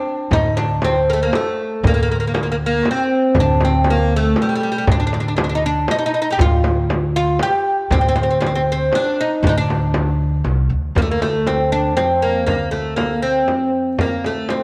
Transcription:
Already playing: D4
0.31 D2 D#4, frame drum, darbuka dum
0.57 D4, darbuka tek, frame drum
0.82 C4, darbuka tek, frame drum
1.08 A#3, darbuka ka
1.13 A3
1.23 A#3
1.33 A3, darbuka tek, frame drum
1.84 D2 A#3, darbuka dum, frame drum
1.94 A#3
2.03 A#3
2.09 A#3, darbuka tek
2.20 A#3
2.27 A#3
2.34 A#3, darbuka tek, frame drum
2.43 A#3
2.52 A#3
2.58 darbuka ka
2.66 A#3
2.83 darbuka tek, frame drum
2.91 C4
3.35 D2, darbuka dum, frame drum
3.40 D4
3.61 darbuka tek, frame drum
3.65 C4
3.84 darbuka tek, frame drum
3.90 A#3
4.12 darbuka ka
4.17 A3
4.36 darbuka tek, frame drum
4.42 G3
4.49 G3
4.55 G3
4.63 G3
4.72 G3
4.78 G3
4.87 D2, frame drum, darbuka dum
4.92 D4
5.00 D4
5.07 D4
5.13 D4, darbuka tek, frame drum
5.20 D4
5.28 D4
5.37 D4, darbuka tek, frame drum
5.44 D4
5.49 D4
5.55 D#4
5.64 D4, darbuka ka
5.88 D#4, darbuka tek, frame drum
5.99 D#4
6.06 D#4
6.14 D#4
6.22 D#4
6.30 D#4 G4
6.39 D2 F4, frame drum, darbuka dum
6.64 darbuka tek, frame drum
6.89 darbuka tek, frame drum
7.14 F4, darbuka ka
7.39 G4, darbuka tek, frame drum
7.90 D2 C4, darbuka dum, frame drum
8.01 C4
8.08 C4
8.16 C4, darbuka tek, frame drum
8.23 C4
8.30 C4
8.41 C4, darbuka tek, frame drum
8.46 C4
8.55 C4
8.66 darbuka ka
8.72 C4
8.92 D4, darbuka tek, frame drum
9.21 D#4
9.43 D2, darbuka dum, frame drum
9.47 D4 D#4
9.58 D4
9.69 darbuka tek, frame drum
9.94 darbuka tek, frame drum
10.20 darbuka ka
10.44 C2, darbuka tek, frame drum
10.69 D2
10.95 D2 A#3, frame drum
11.02 A3
11.11 A#3
11.22 A3, frame drum
11.47 C4, frame drum
11.72 D4
11.96 F2 C4, frame drum
12.22 A#3
12.46 D2 A#3, frame drum
12.71 A3, frame drum
12.96 A#3, frame drum
13.22 C4
13.47 F2, frame drum
13.98 D2 A#3, frame drum
14.24 A3, frame drum
14.49 C4, frame drum

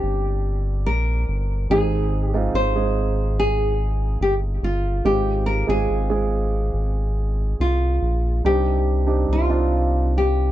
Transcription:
Already playing: G2 D3 C4 D4 G4 C5 D5
0.03 G1
0.86 A#1 A#4
1.28 G1
1.69 G#1 G#2 D#3 G#3 C4 D#4 G#4
2.25 G4
2.34 G#3 C4 D#4 F4
2.54 G#1 C5
2.75 G#3 C4 D#4 G#4
3.40 G#4
4.20 G1 G4
4.62 G1 F4
5.04 G#1 G#2 G#3 C4 F4 G4
5.46 A#4
5.67 G#1 G#3 C4 F4 G#4
5.90 G#1
6.10 G#3 C4 F4 G#4
6.73 G#1
7.60 C2 F4
8.02 A#1
8.44 C2 C3 G3 C4 D4 D#4 G4
9.07 C4 D4 D#4 G4
9.29 C2 F4
9.49 C4 D4 D#4 F4
10.18 G4

